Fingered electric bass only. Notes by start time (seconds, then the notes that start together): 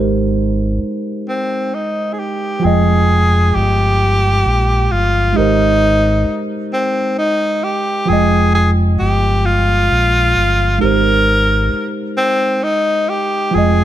Already playing: G#1
0.83 muted fingered electric bass stroke
2.64 F1
3.56 G1
4.46 A#1
4.92 G1
5.38 G#1
6.28 muted fingered electric bass stroke
8.09 F1
9.01 G1
9.91 A#1
10.36 G1
10.82 G#1
11.73 muted fingered electric bass stroke
13.55 F1